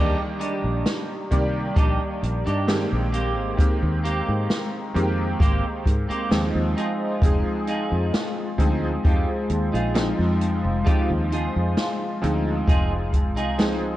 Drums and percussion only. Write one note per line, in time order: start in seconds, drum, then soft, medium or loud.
0.41 closed hi-hat medium
0.86 snare loud
0.86 closed hi-hat medium
1.31 kick medium
1.31 closed hi-hat medium
1.76 kick loud
1.76 closed hi-hat medium
2.23 closed hi-hat medium
2.46 closed hi-hat soft
2.68 snare loud
2.68 closed hi-hat medium
3.13 closed hi-hat medium
3.58 kick loud
3.58 closed hi-hat loud
4.05 closed hi-hat medium
4.50 snare loud
4.50 closed hi-hat medium
4.96 closed hi-hat medium
5.40 kick loud
5.40 closed hi-hat medium
5.86 kick medium
5.86 closed hi-hat medium
6.11 closed hi-hat soft
6.31 snare loud
6.31 closed hi-hat loud
6.77 closed hi-hat medium
7.22 kick loud
7.22 closed hi-hat medium
7.67 closed hi-hat medium
8.14 snare loud
8.14 closed hi-hat medium
8.58 kick medium
8.58 closed hi-hat medium
9.05 kick loud
9.05 closed hi-hat medium
9.50 closed hi-hat medium
9.75 closed hi-hat medium
9.95 snare loud
9.95 closed hi-hat loud
10.41 closed hi-hat medium
10.87 kick loud
10.87 closed hi-hat medium
11.32 closed hi-hat medium
11.77 snare loud
11.77 closed hi-hat medium
12.23 closed hi-hat medium
12.67 kick loud
12.67 closed hi-hat medium
13.13 kick medium
13.13 closed hi-hat medium
13.37 closed hi-hat medium
13.58 snare loud
13.58 closed hi-hat medium